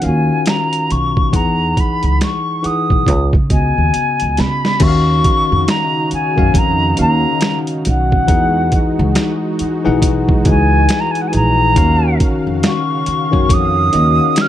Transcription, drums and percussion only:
0.02 closed hi-hat medium
0.46 finger snap medium
0.46 snare medium
0.46 closed hi-hat medium
0.73 closed hi-hat soft
0.91 closed hi-hat medium
1.17 kick medium
1.33 kick medium
1.33 closed hi-hat medium
1.77 kick medium
1.77 closed hi-hat medium
2.03 closed hi-hat soft
2.21 finger snap medium
2.21 snare medium
2.21 closed hi-hat medium
2.64 closed hi-hat medium
2.90 kick medium
3.07 kick medium
3.07 closed hi-hat medium
3.33 kick medium
3.50 kick medium
3.50 closed hi-hat medium
3.94 closed hi-hat medium
4.20 closed hi-hat soft
4.37 snare medium
4.37 closed hi-hat medium
4.65 snare medium
4.80 kick loud
4.80 closed hi-hat medium
4.80 crash medium
5.24 kick medium
5.24 closed hi-hat medium
5.68 finger snap medium
5.68 snare loud
5.68 closed hi-hat medium
6.11 closed hi-hat medium
6.38 kick medium
6.54 kick medium
6.54 closed hi-hat medium
6.97 closed hi-hat medium
7.41 finger snap medium
7.41 snare loud
7.41 closed hi-hat medium
7.67 closed hi-hat medium
7.85 closed hi-hat medium
8.12 kick medium
8.28 kick loud
8.28 closed hi-hat medium
8.72 kick medium
8.72 closed hi-hat medium
9.15 finger snap medium
9.15 snare loud
9.15 closed hi-hat medium
9.59 closed hi-hat medium
10.02 kick medium
10.02 closed hi-hat medium
10.29 kick medium
10.45 kick medium
10.45 closed hi-hat medium
10.89 finger snap medium
10.89 snare loud
10.89 closed hi-hat medium
11.15 closed hi-hat soft
11.33 closed hi-hat medium
11.76 kick loud
11.76 closed hi-hat medium
12.20 kick medium
12.20 closed hi-hat medium
12.63 finger snap medium
12.63 snare loud
12.63 closed hi-hat medium
13.06 closed hi-hat medium
13.33 kick medium
13.49 kick loud
13.49 closed hi-hat medium
13.93 closed hi-hat medium
14.36 finger snap medium
14.36 snare loud
14.36 closed hi-hat medium

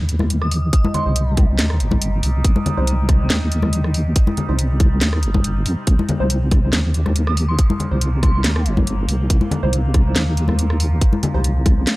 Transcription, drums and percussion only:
0.09 closed hi-hat medium
0.19 cross-stick soft
0.19 high conga medium
0.30 closed hi-hat medium
0.42 cross-stick medium
0.51 open hi-hat medium
0.73 kick loud
0.73 closed hi-hat medium
0.85 high conga loud
0.94 closed hi-hat medium
0.94 low conga medium
1.16 closed hi-hat medium
1.37 kick loud
1.37 cross-stick soft
1.37 closed hi-hat medium
1.37 high conga medium
1.59 snare loud
1.59 closed hi-hat medium
1.70 cross-stick medium
1.80 closed hi-hat medium
1.91 kick medium
1.91 high conga medium
2.02 closed hi-hat medium
2.23 open hi-hat medium
2.44 kick loud
2.44 closed hi-hat medium
2.56 high conga medium
2.66 closed hi-hat medium
2.66 low conga medium
2.87 closed hi-hat medium
3.09 kick loud
3.09 cross-stick medium
3.09 closed hi-hat medium
3.09 high conga medium
3.30 snare loud
3.30 closed hi-hat medium
3.52 closed hi-hat medium
3.62 cross-stick medium
3.62 high conga medium
3.73 closed hi-hat medium
3.84 cross-stick medium
3.94 open hi-hat medium
4.16 kick loud
4.16 closed hi-hat medium
4.27 high conga loud
4.37 closed hi-hat medium
4.37 low conga medium
4.59 closed hi-hat medium
4.80 kick loud
4.80 cross-stick medium
4.80 closed hi-hat medium
4.80 high conga medium
5.01 snare loud
5.01 closed hi-hat medium
5.13 cross-stick medium
5.23 closed hi-hat medium
5.34 kick medium
5.34 high conga loud
5.44 closed hi-hat medium
5.66 open hi-hat medium
5.87 kick loud
5.87 closed hi-hat medium
5.99 high conga medium
6.09 closed hi-hat soft
6.09 low conga medium
6.30 closed hi-hat medium
6.51 kick loud
6.51 cross-stick medium
6.51 closed hi-hat soft
6.51 high conga medium
6.73 snare loud
6.73 closed hi-hat medium
6.94 closed hi-hat medium
7.06 cross-stick medium
7.06 high conga medium
7.16 closed hi-hat medium
7.27 cross-stick medium
7.37 open hi-hat medium
7.59 kick loud
7.59 closed hi-hat medium
7.70 high conga loud
7.80 closed hi-hat medium
7.80 low conga medium
8.01 closed hi-hat medium
8.23 kick loud
8.23 cross-stick medium
8.23 closed hi-hat soft
8.23 high conga medium
8.44 snare loud
8.44 closed hi-hat medium
8.56 cross-stick medium
8.66 closed hi-hat medium
8.77 kick medium
8.77 high conga medium
8.87 closed hi-hat medium
9.09 open hi-hat medium
9.30 kick loud
9.30 closed hi-hat medium
9.41 high conga medium
9.51 closed hi-hat medium
9.51 low conga medium
9.73 closed hi-hat medium
9.94 kick loud
9.94 cross-stick medium
9.94 closed hi-hat medium
9.94 high conga medium
10.16 snare loud
10.16 closed hi-hat medium
10.37 closed hi-hat medium
10.48 cross-stick medium
10.48 high conga medium
10.59 closed hi-hat medium
10.70 cross-stick medium
10.80 open hi-hat medium
11.01 kick loud
11.01 closed hi-hat medium
11.13 high conga medium
11.23 closed hi-hat medium
11.23 low conga medium
11.44 closed hi-hat medium
11.66 kick loud
11.66 cross-stick medium
11.66 closed hi-hat medium
11.66 high conga medium
11.87 snare loud
11.87 closed hi-hat medium

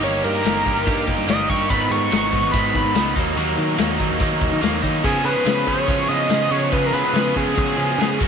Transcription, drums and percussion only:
0.02 ride medium
0.02 shaker medium
0.24 ride medium
0.24 shaker medium
0.35 shaker soft
0.45 snare loud
0.45 ride medium
0.45 shaker medium
0.66 kick medium
0.66 ride medium
0.66 shaker medium
0.86 kick loud
0.86 ride loud
0.86 shaker medium
1.07 kick medium
1.07 ride medium
1.07 shaker medium
1.28 snare loud
1.28 ride loud
1.28 shaker medium
1.49 kick medium
1.49 ride medium
1.49 shaker medium
1.60 shaker soft
1.70 kick loud
1.70 ride loud
1.70 shaker medium
1.91 ride medium
1.91 shaker medium
2.02 shaker soft
2.12 snare loud
2.12 ride loud
2.12 shaker medium
2.32 kick medium
2.32 ride medium
2.32 shaker medium
2.53 kick loud
2.53 ride loud
2.53 shaker medium
2.75 kick medium
2.75 ride medium
2.85 shaker soft
2.95 snare loud
2.95 ride medium
2.95 shaker medium
3.14 kick loud
3.14 ride medium
3.14 shaker loud
3.26 shaker soft
3.36 ride medium
3.36 shaker medium
3.57 ride medium
3.57 shaker medium
3.67 shaker soft
3.77 snare loud
3.77 ride medium
3.77 shaker medium
3.98 kick medium
3.98 ride medium
3.98 shaker medium
4.19 kick loud
4.19 ride medium
4.19 shaker medium
4.40 kick loud
4.40 ride medium
4.40 shaker medium
4.52 shaker soft
4.61 snare loud
4.61 ride medium
4.61 shaker medium
4.83 kick medium
4.83 ride medium
4.83 shaker medium
4.95 shaker soft
5.04 kick loud
5.04 crash loud
5.04 shaker medium
5.25 ride medium
5.25 shaker medium
5.45 snare loud
5.45 ride loud
5.45 shaker loud
5.67 kick medium
5.67 ride medium
5.67 shaker medium
5.88 kick loud
5.88 ride medium
5.88 shaker medium
6.09 ride medium
6.09 shaker medium
6.30 snare loud
6.30 ride medium
6.30 shaker medium
6.51 ride medium
6.51 shaker medium
6.72 kick loud
6.72 ride medium
6.72 shaker medium
6.93 ride medium
6.93 shaker medium
7.14 snare loud
7.14 ride loud
7.14 shaker medium
7.35 kick medium
7.35 ride medium
7.35 shaker medium
7.55 kick loud
7.55 ride loud
7.55 shaker medium
7.77 ride medium
7.77 shaker medium
7.99 snare loud
7.99 ride medium
7.99 shaker loud
8.20 kick loud
8.20 ride medium
8.20 shaker medium

